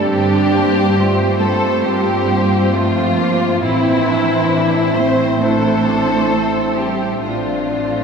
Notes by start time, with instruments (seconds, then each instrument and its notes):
Already playing: french horn section G4, flute D5
0.04 harp G2, double bass section G2, cello section G3, clarinet C4, french horn section C4, viola section D4, violin section G4 C5
0.29 harp C4
0.51 clarinet A#3, harp C5
0.73 harp F4
0.95 clarinet A3, viola section C4, french horn section F4, flute C5, harp F5
1.19 harp C5
1.40 clarinet G3, viola section A3, cello section A3, harp F4, violin section A4
1.64 harp C4
1.84 harp G3, cello section G3, viola section A#3, clarinet C4, violin section G4
2.07 harp C4
2.30 clarinet A#3, viola section C4, harp C5
2.52 harp F4
2.74 cello section F3, viola section A3, clarinet A3, violin section F4, flute C5, harp F5
2.97 harp C5
3.19 clarinet A#3, viola section A#3, harp F4
3.41 harp C4
3.62 double bass section A1, harp A2, cello section E3, french horn section C4 E4, viola section C4, clarinet C4, violin section E4 C5, flute E5
3.86 harp C4
4.07 clarinet D4, harp C5
4.29 harp E4
4.52 clarinet C4, viola section D4, harp E5, flute E5
4.75 harp C5
4.97 clarinet A3, cello section C4, viola section C4, harp E4, violin section C5
5.39 harp E3, cello section A3, clarinet D4, viola section E4, violin section A4, flute C5
5.64 harp C4
5.86 viola section D4, harp C5
6.08 harp E4
6.31 clarinet C4, viola section C4, harp E5
6.55 harp C5
6.78 cello section G3, clarinet C4, harp E4, violin section G4
7.01 harp C4
7.23 double bass section A1, harp A2, cello section F3, viola section A3, french horn section C4 D4, clarinet D4, violin section F4 C5, flute D5
7.48 harp C4
7.71 harp D5
7.95 harp C5